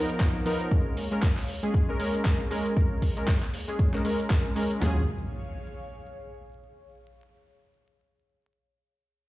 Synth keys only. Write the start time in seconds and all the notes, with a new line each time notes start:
Already playing: F3 B3 D#4 A#4
0.45 F3 B3 D#4 A#4
0.71 G#3 C#4 A#4
1.11 G#3 C#4 A#4
1.63 G#3 C#4 G#4
1.88 G#3 C#4 A#4
1.99 G#3 C#4 A#4
2.50 G#3 C#4 A#4
2.76 G#3 C#4 A#4
3.17 G#3 C#4 A#4
3.68 G#3 C#4 G#4
3.93 G#3 C#4 A#4
4.04 G#3 C#4 A#4
4.56 G#3 C#4 A#4
4.80 F#3 C#4 F4 G#4